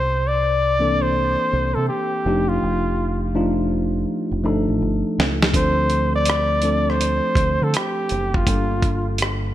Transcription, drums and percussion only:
5.20 snare
5.42 snare
5.54 kick, closed hi-hat
5.90 closed hi-hat
6.26 closed hi-hat
6.30 cross-stick
6.62 closed hi-hat
6.90 cross-stick
7.01 closed hi-hat
7.35 kick, closed hi-hat
7.74 cross-stick, closed hi-hat
8.09 closed hi-hat
8.34 kick
8.47 kick, closed hi-hat
8.82 kick, closed hi-hat
9.18 closed hi-hat
9.22 cross-stick

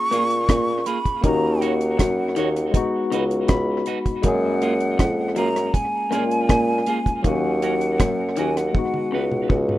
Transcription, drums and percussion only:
0.12 closed hi-hat
0.30 closed hi-hat
0.49 kick, cross-stick, closed hi-hat
0.86 closed hi-hat
1.06 kick, closed hi-hat
1.24 kick, closed hi-hat
1.62 closed hi-hat
1.81 closed hi-hat
1.99 kick, cross-stick, closed hi-hat
2.36 closed hi-hat
2.56 closed hi-hat
2.74 kick, closed hi-hat
3.12 closed hi-hat
3.31 closed hi-hat
3.48 kick, cross-stick, closed hi-hat
3.86 closed hi-hat
4.06 kick, closed hi-hat
4.23 kick, closed hi-hat
4.62 closed hi-hat
4.80 closed hi-hat
4.99 kick, cross-stick, closed hi-hat
5.36 closed hi-hat
5.56 cross-stick, closed hi-hat
5.74 kick, closed hi-hat
6.12 cross-stick, closed hi-hat
6.31 closed hi-hat
6.49 kick, cross-stick, closed hi-hat
6.86 closed hi-hat
7.06 kick, closed hi-hat
7.24 kick, closed hi-hat
7.62 closed hi-hat
7.81 closed hi-hat
8.00 kick, cross-stick, closed hi-hat
8.36 closed hi-hat
8.57 cross-stick, closed hi-hat
8.75 kick, high tom
8.94 high tom
9.32 mid tom
9.50 kick
9.69 mid tom

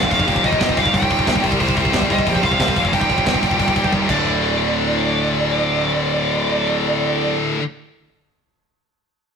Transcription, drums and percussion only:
0.03 kick
0.11 kick, open hi-hat
0.20 kick
0.28 kick, open hi-hat
0.36 kick
0.44 kick, open hi-hat
0.53 kick
0.61 kick, snare, open hi-hat
0.69 kick
0.77 kick, open hi-hat
0.86 kick
0.94 kick, open hi-hat
1.02 kick
1.11 kick, open hi-hat
1.19 kick
1.27 kick, snare, open hi-hat
1.36 kick
1.44 kick, open hi-hat
1.52 kick
1.60 kick, open hi-hat
1.69 kick
1.77 kick, open hi-hat
1.85 kick
1.93 kick, snare, open hi-hat
2.02 kick
2.10 kick, open hi-hat
2.18 kick
2.27 kick, open hi-hat
2.35 kick
2.43 kick, open hi-hat
2.52 kick
2.60 kick, snare, open hi-hat
2.68 kick
2.76 kick, open hi-hat
2.85 kick
2.93 kick, open hi-hat
3.01 kick
3.10 kick, open hi-hat
3.18 kick
3.26 kick, snare, open hi-hat
3.34 kick
3.43 kick, open hi-hat
3.51 kick
3.60 kick, open hi-hat
3.68 kick
3.76 kick, open hi-hat
3.84 kick
3.93 kick, high tom
4.09 kick, crash

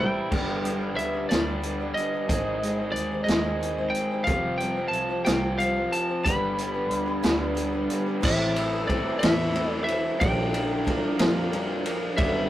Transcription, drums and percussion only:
0.00 mid tom
0.32 kick, crash
0.65 closed hi-hat
0.98 closed hi-hat
1.31 snare, closed hi-hat
1.63 closed hi-hat
1.97 closed hi-hat
2.29 kick, closed hi-hat
2.63 closed hi-hat
2.96 closed hi-hat
3.28 snare, closed hi-hat
3.63 closed hi-hat
3.95 closed hi-hat
4.27 kick, closed hi-hat
4.60 closed hi-hat
4.93 closed hi-hat
5.26 snare, closed hi-hat
5.60 closed hi-hat
5.93 closed hi-hat
6.26 kick, closed hi-hat
6.58 closed hi-hat
6.91 closed hi-hat
7.23 snare, closed hi-hat
7.57 closed hi-hat
7.90 closed hi-hat
8.23 kick, crash
8.56 ride
8.89 kick, ride
9.23 snare, ride
9.56 ride
9.88 ride
10.21 kick, ride
10.54 ride
10.87 kick, ride
11.19 snare, ride
11.53 ride
11.86 ride
12.18 kick, ride

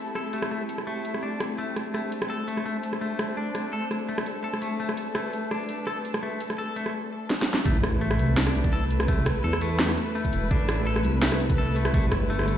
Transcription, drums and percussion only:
0.15 cross-stick
0.33 closed hi-hat
0.42 cross-stick
0.69 closed hi-hat
0.78 cross-stick
1.05 closed hi-hat
1.14 cross-stick
1.40 cross-stick, closed hi-hat
1.76 cross-stick, closed hi-hat
1.95 cross-stick
2.12 closed hi-hat
2.22 cross-stick
2.48 closed hi-hat
2.57 cross-stick
2.83 closed hi-hat
2.93 cross-stick
3.19 cross-stick, closed hi-hat
3.55 cross-stick, closed hi-hat
3.91 cross-stick, closed hi-hat
4.18 cross-stick
4.26 closed hi-hat
4.54 cross-stick
4.62 closed hi-hat
4.89 cross-stick
4.97 closed hi-hat
5.15 cross-stick
5.33 closed hi-hat
5.51 cross-stick
5.69 closed hi-hat
5.87 cross-stick
6.05 closed hi-hat
6.14 cross-stick
6.41 closed hi-hat
6.50 cross-stick, closed hi-hat
6.76 closed hi-hat
6.86 cross-stick
7.30 snare
7.42 snare
7.54 snare
7.66 kick
7.83 cross-stick, closed hi-hat
8.11 cross-stick
8.19 closed hi-hat
8.37 snare
8.47 cross-stick
8.55 closed hi-hat
8.64 kick
8.91 closed hi-hat
9.00 cross-stick
9.08 kick
9.26 kick, cross-stick, closed hi-hat
9.53 cross-stick
9.61 closed hi-hat
9.79 snare
9.89 cross-stick
9.97 closed hi-hat
10.25 kick
10.33 closed hi-hat
10.51 kick
10.69 cross-stick, closed hi-hat
10.96 cross-stick
11.05 closed hi-hat
11.22 snare
11.32 cross-stick
11.40 closed hi-hat
11.50 kick
11.76 closed hi-hat
11.85 cross-stick
11.94 kick
12.12 kick, cross-stick, closed hi-hat
12.39 cross-stick
12.41 cross-stick
12.43 cross-stick
12.46 cross-stick, closed hi-hat

